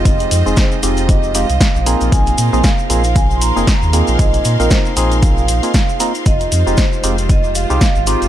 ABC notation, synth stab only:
X:1
M:4/4
L:1/16
Q:"Swing 16ths" 1/4=116
K:Fm
V:1 name="Synth stab"
[A,CEFG]3 [A,CEFA]3 [A,CEFG]4 [A,CEFG] z3 [B,CEFA]2- | [B,CEFA]3 [B,CEFA] z2 [B,CEFA] z4 [B,CEFA] z2 [B,CEFA]2- | [B,CEFA]3 [B,CEFB]3 [B,CEFA]4 z [B,CEFA] z2 [B,CEFB] z | z3 [A,CEFG] z2 [A,CEFG] z4 [A,CEFG] z2 [A,CEFG]2 |]